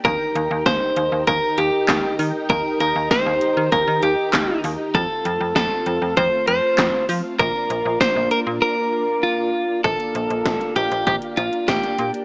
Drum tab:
HH |x-x-x-x-x-x-x-o-|x-x-x-x-x-x-x-o-|x-x-x-x-x-x-x-o-|x-x-x-x---------|
CP |------------x---|------------x---|------------x---|----------------|
SD |----o-------o---|----o-------o---|----o-------o---|----o-----------|
BD |o---o---o---o---|o---o---o---o---|o---o---o---o---|o---o-----------|

HH |xxxxxxxxxxxxxxxx|
CP |----------------|
SD |----o-------o---|
BD |o---o---o---o---|